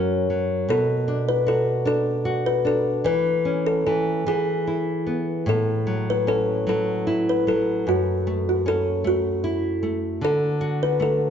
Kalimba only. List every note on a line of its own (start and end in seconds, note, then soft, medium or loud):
0.00 0.36 F#4 medium
0.70 1.24 A4 medium
1.29 1.46 B4 medium
1.48 1.65 A4 medium
1.87 2.42 A4 medium
2.46 2.55 B4 medium
2.67 2.84 A4 medium
3.06 3.67 B4 medium
3.67 3.85 A4 medium
3.87 4.05 A4 medium
4.28 5.14 G#4 medium
5.49 6.10 A4 medium
6.10 6.27 B4 medium
6.28 6.68 A4 medium
6.69 7.30 A4 medium
7.29 7.49 B4 medium
7.48 7.89 A4 medium
7.89 8.48 F#4 medium
8.49 8.68 F#4 medium
8.68 9.03 A4 medium
9.07 9.90 F#4 medium
10.25 10.84 A4 medium
10.83 11.02 B4 medium
11.02 11.30 A4 medium